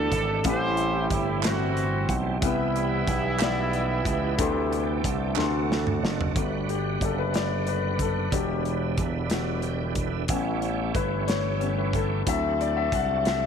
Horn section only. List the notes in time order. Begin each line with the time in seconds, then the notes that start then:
Already playing: D4 A4
0.47 E4 G4 C5
1.12 E4
1.46 C4 F#4
2.46 G3 B3 E4